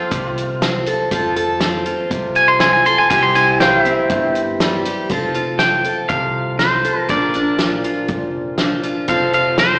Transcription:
Already playing: F3 C4 F4 A4
0.11 C2 C3, kick, closed hi-hat
0.38 closed hi-hat
0.62 C4, snare, closed hi-hat
0.86 A4, closed hi-hat
1.11 F2 F3 F4 A4, kick, closed hi-hat
1.36 A4, closed hi-hat
1.60 C4, snare, closed hi-hat
1.86 F4, closed hi-hat
2.11 C2 C3, kick, closed hi-hat
2.35 G#5, closed hi-hat
2.48 C6
2.60 C4 G#5, snare, closed hi-hat
2.73 G#5
2.86 A4 C6, closed hi-hat
2.98 G#5
3.10 C2 C3 C4 E4 G4 G#5, kick, closed hi-hat
3.23 C6
3.35 E4 G#5, closed hi-hat
3.60 G3 C5 F5 G5, snare, closed hi-hat
3.83 C4 E5, closed hi-hat
4.10 G1 G2, kick, closed hi-hat
4.35 closed hi-hat
4.60 G3, snare, closed hi-hat
4.85 G4, closed hi-hat
5.09 F1 F3 C4 F4 A4, kick, closed hi-hat
5.34 F4, closed hi-hat
5.59 C4 G5, snare, closed hi-hat
5.84 A4, closed hi-hat
6.09 C2 C3 F5, kick, closed hi-hat
6.59 C4 F4 C5, snare, closed hi-hat
6.84 A4, closed hi-hat
7.09 A#1 A#2 F3 D4 F4 A#4 D5, kick, closed hi-hat
7.34 D4, closed hi-hat
7.59 F3, snare, closed hi-hat
7.84 F4, closed hi-hat
8.08 F1 A#2, kick, closed hi-hat
8.58 F3 D4, snare, closed hi-hat
8.83 F4, closed hi-hat
9.08 F1 F3 C4 F4 A4 F5, kick, closed hi-hat
9.33 F4 F5, closed hi-hat
9.58 C4 C5, snare, closed hi-hat

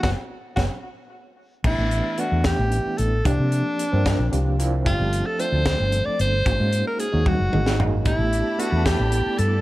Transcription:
0.03 F#1 F#3 B3 C#4 F#4, kick, snare
0.56 F#1 F#3 B3 C#4 F#4, kick, snare
1.64 A1 E3 A3 B3 D4 E4 G4, kick, crash
1.78 A1
1.91 closed hi-hat
2.18 E3 A3 B3 D4 E4 F#4, closed hi-hat
2.32 E2
2.44 G4, kick, snare, closed hi-hat
2.59 A1
2.72 closed hi-hat
2.98 A1 A4, closed hi-hat
3.25 C2 F3 A#3 C4 D4 G4, kick, closed hi-hat
3.40 C3
3.52 closed hi-hat
3.79 closed hi-hat
3.91 G2 F3 A#3 C4 D4 A#4
4.06 kick, snare, closed hi-hat
4.19 A#1
4.32 C2 F3 A#3 C4 D4 G4, closed hi-hat
4.59 F3 A#3 C4 D4 E4, closed hi-hat
4.85 G1 F3 A3 C4 D4 F4 G4, kick, closed hi-hat
5.00 G1
5.13 closed hi-hat
5.26 A4
5.39 F3 A3 C4 D4 A4 C5, closed hi-hat
5.52 D2
5.66 kick, snare, closed hi-hat
5.80 G1
5.92 closed hi-hat
6.05 D5, muted fretless electric bass stroke
6.19 G1 C5, closed hi-hat
6.45 G#1 G#3 A#3 C#4 D#4 F#4, kick, closed hi-hat
6.60 G#2
6.73 closed hi-hat
6.87 A#4
7.00 G#4, closed hi-hat
7.12 D#2 G#3 A#3 C#4 D#4 F#4
7.26 F#4, kick, high tom
7.40 F#1
7.53 G#1 G#3 A#3 C#4 D#4 G#4, mid tom
7.66 snare
7.79 G#3 A#3 C#4 D#4 F#4, floor tom
8.05 A1 A3 B3 D4 E4 G4 D5 A5 B5, kick, closed hi-hat
8.19 A1
8.33 closed hi-hat
8.58 A3 B3 D4 E4 F#4 A4, closed hi-hat
8.72 E2
8.85 G4, kick, snare, closed hi-hat
8.99 A1
9.12 closed hi-hat
9.39 G2 A4, closed hi-hat

